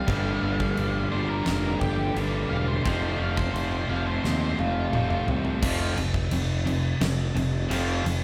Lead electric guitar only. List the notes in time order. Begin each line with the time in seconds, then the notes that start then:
Already playing: F5
1.12 C5
1.29 A#4
1.80 G4
2.50 F5
2.68 C5
2.84 C5
3.03 C5
3.19 F5
3.37 C5
3.53 C5
3.71 C5
3.89 F5
4.07 C5
4.24 C5
4.41 C5
4.59 F4